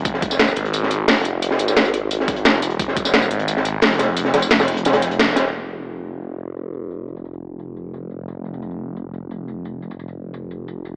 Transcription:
<<
  \new Staff \with { instrumentName = "Detuned saw bass" } { \clef bass \time 4/4 \key ees \mixolydian \tempo 4 = 175 f,,4. aes,,4. f,,4~ | f,,8 aes,,2~ aes,,8 f,,4 | f,,4. aes,,4. f,,4~ | f,,8 f,,8 f,,2~ f,,8 ees,,8 |
f,,1~ | f,,1~ | f,,1~ | f,,1 | }
  \new DrumStaff \with { instrumentName = "Drums" } \drummode { \time 4/4 <hh bd tamb>16 sn16 <hh bd tamb>16 <sn tamb>16 <hh sn tamb>16 tamb16 hh16 hh16 <hh tamb>16 sn16 <hh tamb>8 <hh hho sn tamb>8 <hh tamb>8 | <hh tamb>16 sn16 <hh tamb>16 <sn tamb>16 <hh sn tamb>16 <hh tamb>16 hh8 <hh tamb>16 sn16 <hh bd sn tamb>16 hh16 <hh sn tamb>8 <hh tamb>16 hh16 | <hh bd tamb>16 sn16 <hh bd tamb>16 <sn tamb>16 <hh sn tamb>16 tamb16 hh16 hh16 <hh tamb>16 sn16 <hh tamb>8 <hh hho sn tamb>8 <hh sn tamb>8 | <hh tamb>16 sn16 <hh hho sn tamb>16 tamb16 <hh sn tamb>16 <hho sn tamb>16 hh16 hh16 <hh sn tamb>16 <hh sn>16 <hh sn tamb>16 hh16 <hh sn tamb>8 <hh sn tamb>8 |
tamb8. tamb16 tamb16 tamb8. tamb8 tamb8 tamb8 tamb8 | tamb8 tamb16 tamb16 tamb16 tamb8. tamb8 tamb8 tamb8 tamb8 | tamb8 tamb16 tamb16 tamb16 tamb8. tamb8 tamb8 tamb8 tamb8 | tamb8 tamb16 tamb16 tamb16 tamb8. tamb8 tamb8 tamb8 tamb8 | }
>>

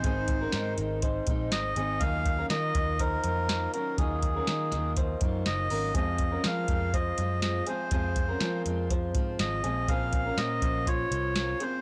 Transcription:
<<
  \new Staff \with { instrumentName = "Melodica" } { \time 4/4 \key f \phrygian \tempo 4 = 122 c''4. r4. ees''4 | f''4 ees''4 bes'4. bes'8 | aes'2 r4 ees''4 | ees''4 f''4 ees''4 ees''8 c''8~ |
c''4. r4. ees''4 | f''4 ees''4 des''4. c''8 | }
  \new Staff \with { instrumentName = "Clean electric guitar" } { \time 4/4 \key f \phrygian <c' aes'>8. <des' bes'>16 <ees' bes'>4 <ees' c''>4. <c' aes'>8 | <ees' aes'>8. <des' bes'>16 <ees' bes'>4 <ees' c''>4. <des' bes'>8 | <ees' aes'>8. <des' bes'>16 <ees' bes'>4 <ees' c''>4. <des' bes'>8 | <c' aes'>8. <des' bes'>16 <f' bes'>4 <f' c''>4. <c' aes'>8 |
<c' aes'>8. <des' bes'>16 <f' bes'>4 <f' c''>4. <c' aes'>8 | <c' aes'>8. <des' bes'>16 <des' bes'>4 <f' c'''>4. <c' aes'>8 | }
  \new Staff \with { instrumentName = "Steel-string acoustic guitar" } { \time 4/4 \key f \phrygian <aes, ees aes c' ees'>4 <ees aes c' ees'>8 <ees aes c' ees'>4 <ees aes c' ees'>8 <ees aes c' ees'>8 <ees aes c' ees'>8 | <ees ges bes f'>4 <ees ges bes f'>8 <ees ges bes f'>4 <ees ges bes f'>8 <ees ges bes f'>8 <ees ges bes f'>8 | <ees ges bes f'>4 <ees ges bes f'>8 <ees ges bes f'>4 <ees ges bes f'>8 <ees ges bes f'>8 <ees ges bes f'>8 | <f aes c' f'>4 <f aes c' f'>8 <f aes c' f'>4 <f aes c' f'>8 <f aes c' f'>8 <f aes c' f'>8 |
<f aes c' f'>4 <f aes c' f'>8 <f aes c' f'>4 <f aes c' f'>8 <f aes c' f'>8 <f aes c' f'>8 | <bes, f bes des' f' c''>4 <bes des' c''>8 <bes des' f' c''>4 <bes des' f' c''>8 <bes des' f' c''>8 <bes des' f' c''>8 | }
  \new Staff \with { instrumentName = "Picked electric bass" } { \clef bass \time 4/4 \key f \phrygian aes,,4 aes,8 aes,,4 bes,,8 aes,,8 aes,,8 | ees,4 ees8 ees,4 f,4 r8 | ees,4 ees8 ees,4 ges,8 ges,,8 aes,,8 | f,4 f8 f,4 ges,4 r8 |
f,4 f8 f,4 aes,8 aes,,8 bes,,8 | bes,,4 bes,8 bes,,4 c,4 r8 | }
  \new DrumStaff \with { instrumentName = "Drums" } \drummode { \time 4/4 <hh bd>8 <hh bd>8 <hh sn>8 hh8 <hh bd>8 <hh bd>8 <hh sn>8 hh8 | <hh bd>8 <hh bd>8 <hh sn>8 <hh bd>8 <hh bd>8 hh8 <hh sn>8 hh8 | <hh bd>8 <hh bd>8 <hh sn>8 <hh sn>8 <hh bd>8 <hh bd>8 <hh sn>8 hho8 | <hh bd>8 <hh bd>8 <hh sn>8 <hh bd>8 <hh bd>8 hh8 <hh sn>8 hh8 |
<hh bd>8 <hh bd>8 <hh sn>8 hh8 <hh bd>8 <hh bd>8 <hh sn>8 hh8 | <hh bd>8 <hh bd>8 <hh sn>8 <hh bd>8 <hh bd>8 hh8 <hh sn>8 hh8 | }
>>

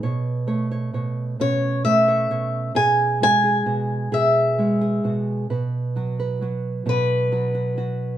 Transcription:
<<
  \new Staff \with { instrumentName = "Steel-string acoustic guitar" } { \time 6/8 \key e \major \tempo 4. = 44 r4. cis''8 e''4 | gis''8 gis''4 e''4 r8 | r4. b'4. | }
  \new Staff \with { instrumentName = "Nylon-string guitar" } { \time 6/8 \key e \major << { cis''8 cis''16 cis''16 cis''8 cis'8 cis''16 cis''16 cis''8 | gis'8 fis'16 gis'16 fis'8 gis'8 fis'16 gis'16 fis'8 | b'8 fis'16 b'16 fis'8 fis'8 fis'16 fis'16 fis'8 | } \\ { b,8 a8 b,8 b,8 a8 b,8 | b,8 gis8 b,8 b,8 gis8 b,8 | b,8 fis8 fis8 b,8 fis8 fis8 | } >> }
>>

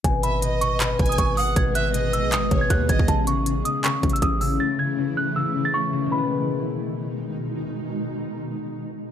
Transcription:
<<
  \new Staff \with { instrumentName = "Celesta" } { \time 4/4 \key gis \phrygian \tempo 4 = 158 gis''8 b''4 cis'''8 b''8. dis'''16 cis'''8 dis'''8 | gis'''8 fis'''4 e'''8 dis'''8. gis'''16 fis'''8 gis'''8 | a''8 cis'''4 dis'''8 cis'''8. e'''16 dis'''8 e'''8 | a'''8 gis'''4 fis'''8 e'''8. a'''16 cis'''4 |
b''2. r4 | r1 | }
  \new Staff \with { instrumentName = "Violin section" } { \time 4/4 \key gis \phrygian r8 e''8 dis''4. gis''4 fis''8 | r8 e''8 dis''4. cis''4 dis''8 | r1 | r1 |
r1 | r1 | }
  \new Staff \with { instrumentName = "Ambient pad" } { \clef bass \time 4/4 \key gis \phrygian <dis gis b gis'>1~ | <dis gis b gis'>1 | <cis e a e'>1~ | <cis e a e'>1 |
<b, dis gis dis'>1~ | <b, dis gis dis'>1 | }
  \new Staff \with { instrumentName = "Harp" } { \clef bass \time 4/4 \key gis \phrygian b,8 b,8 b,8 b,8 b,8 b,8 b8 b,8 | b,8 b,8 b,8 b,8 b,8 b,8 b8 b,8 | cis8 cis8 cis8 cis8 cis8 cis8 cis'8 cis8 | cis8 cis8 cis8 cis8 cis8 cis8 cis'8 cis8 |
<b, dis gis b>1~ | <b, dis gis b>1 | }
  \new Staff \with { instrumentName = "808-style bass" } { \clef bass \time 4/4 \key gis \phrygian gis,,2~ gis,,8 gis,,8 gis,,4 | gis,,4.~ gis,,16 b,,16. gis,,16. gis,,8 dis,8 gis,,16 dis,16 | a,,4. r4 a,,8 a,,4 | r1 |
r1 | r1 | }
  \new DrumStaff \with { instrumentName = "Drums" } \drummode { \time 4/4 <hh bd>8 hh8 hh8 hh8 \tuplet 3/2 { <hc hh>16 r16 r16 <hh bd>16 hh16 hh16 } <hh bd>8 hho8 | <hh bd>8 hh8 hh8 hh8 <hc hh>8 <hh bd>8 <hh bd>8 <hh bd>16 bd16 | <hh bd>8 hh8 hh8 hh8 \tuplet 3/2 { <hc hh>16 r16 r16 <hh bd>16 hh16 hh16 } <hh bd>8 hho8 | r4 r4 r4 r4 |
r4 r4 r4 r4 | r4 r4 r4 r4 | }
>>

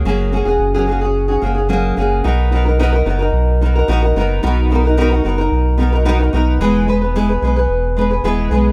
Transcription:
<<
  \new Staff \with { instrumentName = "Nylon-string guitar" } { \time 4/4 \key b \major \tempo 4 = 110 <fis ais cis' fis' gis'>8 <ais cis' fis' gis'>16 <cis' fis' gis'>8 <fis ais cis' fis' gis'>16 <ais cis' fis' gis'>16 <cis' fis' gis'>8 <cis' fis' gis'>16 <ais cis' fis' gis'>16 <cis' fis' gis'>16 <fis ais cis' fis' gis'>8 <ais cis' fis' gis'>8 | <b dis' fis' ais'>8 <b dis' fis' ais'>16 <dis' fis' ais'>16 <b dis' fis' ais'>16 <dis' fis' ais'>16 <b dis' fis' ais'>16 <dis' fis' ais'>8. <b dis' fis' ais'>16 <dis' fis' ais'>16 <b dis' fis' ais'>16 <dis' fis' ais'>16 <b dis' fis' ais'>8 | <b dis' fis' ais'>8 <b dis' fis' ais'>16 <dis' fis' ais'>16 <b dis' fis' ais'>16 <dis' fis' ais'>16 <b dis' fis' ais'>16 <dis' fis' ais'>8. <b dis' fis' ais'>16 <dis' fis' ais'>16 <b dis' fis' ais'>16 <dis' fis' ais'>16 <b dis' fis' ais'>8 | <e gis b gis' b'>8 <gis b gis' b'>16 <b gis' b'>16 <e gis b gis' b'>16 <b gis' b'>16 <gis b gis' b'>16 <b gis' b'>8. <gis b gis' b'>16 <b gis' b'>16 <e gis b gis' b'>8 <gis b gis' b'>8 | }
  \new Staff \with { instrumentName = "Sub bass" } { \clef bass \time 4/4 \key b \major fis,,8. e,,16 fis,,4. fis,,4 fis,,8 | b,,4. fis,,8 b,,4 ais,,8 fis,,8 | b,,4. fis,,8 b,,4. b,,8 | e,,4. b,,8 e,,4 dis,,8 b,,8 | }
>>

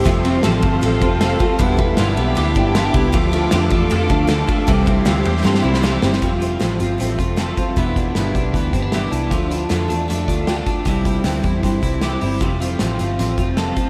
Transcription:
<<
  \new Staff \with { instrumentName = "String machine" } { \time 4/4 \key f \lydian \tempo 4 = 155 << { c'''1 | d'''1~ | d'''1 | c'''1 |
r1 | r1 | r1 | r1 |
r1 | } \\ { <a' f''>1 | <g' e''>1 | <a' f''>1 | <g' e''>1 |
r1 | r1 | r1 | r1 |
r1 | } >> }
  \new Staff \with { instrumentName = "Clean electric guitar" } { \time 4/4 \key f \lydian f8 c'8 a'8 c'8 a'8 f'8 a'8 c'8 | b8 b8 f'16 g'16 b8 g'8 d'8 f'16 g'16 b8 | f8 a8 g'16 a'16 a8 a'8 d'8 a'8 a8 | g8 c'8 f'16 g'16 c'8 f'16 g'16 e'8 f'16 g'16 c'8 |
f8 f'8 c'8 f'8 c'8 f'8 a'8 f'8 | b8 d'8 b8 d'8 b8 c'16 d'16 g'8 d'8 | f8 d'8 a8 d'8 a8 d'8 g'16 a'16 d'8 | g8 e'8 c'8 e'8 c'8 e'8 g'8 e'8 |
f8 f'8 c'8 f'8 c'8 f'8 a'8 f'8 | }
  \new Staff \with { instrumentName = "Steel-string acoustic guitar" } { \time 4/4 \key f \lydian <f, c f a c' f'>8 <f a c' f'>8 <f, c f a c' f'>8 <f a c' f'>8 <f a c' f'>8 <f a c' f'>8 <f, c f a c' f'>8 <f a c' f'>8 | <e, b, e g d' e'>8 <e g d' e'>8 <e, b, e g d' e'>8 <e g d' e'>8 <e g d' e'>8 <e g d' e'>8 <e, b, e g d' e'>8 <e g d' e'>8 | <d a d' f'>8 <a d' f'>8 <d a d' f'>8 <a d' f'>8 <d a d' f'>8 <a d' f'>8 <d a d' f'>8 <a d' f'>8 | <c e g c' e'>8 <g c' e'>8 <c e g c' e'>8 <g c' e'>8 <e g c' e'>8 <g c' e'>8 <c e g c' e'>8 <g c' e'>8 |
<f, c f a c' f'>8 <f a c' f'>8 <f, c f a c' f'>8 <f a c' f'>8 <f a c' f'>8 <f a c' f'>8 <f, c f a c' f'>8 <f a c' f'>8 | <e, b, e g d' e'>8 <e g d' e'>8 <e, b, e g d' e'>8 <e g d' e'>8 <e g d' e'>8 <e g d' e'>8 <e, b, e g d' e'>8 <e g d' e'>8 | <d a d' f'>8 <a d' f'>8 <d a d' f'>8 <a d' f'>8 <d a d' f'>8 <a d' f'>8 <d a d' f'>8 <a d' f'>8 | <c e g c' e'>8 <g c' e'>8 <c e g c' e'>8 <g c' e'>8 <e g c' e'>8 <g c' e'>8 <c e g c' e'>8 <g c' e'>8 |
<f, c f a c' f'>8 <f a c' f'>8 <f, c f a c' f'>8 <f a c' f'>8 <f a c' f'>8 <f a c' f'>8 <f, c f a c' f'>8 <f a c' f'>8 | }
  \new Staff \with { instrumentName = "Picked electric bass" } { \clef bass \time 4/4 \key f \lydian f,,4 a,,8 g,,8 a,,8 f,,4 r8 | e,,4 g,,8 b,,8 d,8 g,,4 c,8 | d,4 f,8 e,8 f,8 d,4 r8 | c,4 d,8 e,8 g,8 c,4 g,,8 |
f,,4 a,,8 g,,8 a,,8 f,,4 r8 | e,,4 g,,8 b,,8 d,8 g,,4 c,8 | d,4 f,8 e,8 f,8 d,4 r8 | c,4 d,8 e,8 g,8 c,4 g,,8 |
f,,4 a,,8 g,,8 a,,8 f,,4 r8 | }
  \new DrumStaff \with { instrumentName = "Drums" } \drummode { \time 4/4 <hhp bd cymr>8 cymr8 <cymr sn>8 <bd cymr>8 cymr8 <bd cymr>8 <cymr sn>8 <bd cymr>8 | <bd cymr>8 <bd cymr>8 <cymr sn>8 cymr8 cymr8 <bd cymr>8 <cymr sn>8 <bd cymr>8 | <bd cymr>8 cymr8 <cymr sn>8 <bd cymr>8 cymr8 <bd cymr>8 <cymr sn>8 <bd cymr>8 | <bd cymr>8 <bd cymr>8 <cymr sn>8 cymr8 sn16 sn8 sn16 sn8 sn16 sn16 |
<hh bd>8 hh8 <hh sn>8 hh8 hh8 <hh bd>8 <hh sn>8 <hh bd>8 | <hh bd>8 <hh bd>8 <hh sn>8 <hh bd>8 <hh bd>8 <hh bd>8 <hh sn>8 hh8 | <hh bd>8 hh8 <hh sn>8 hh8 hh8 <hh bd>8 <hh sn>8 <hh bd>8 | <hh bd>8 <hh bd>8 <hh sn>8 <hh bd>8 <hh bd>8 <hh bd>8 <hh sn>8 hho8 |
<hh bd>8 hh8 <hh sn>8 hh8 hh8 <hh bd>8 <hh sn>8 <hh bd>8 | }
>>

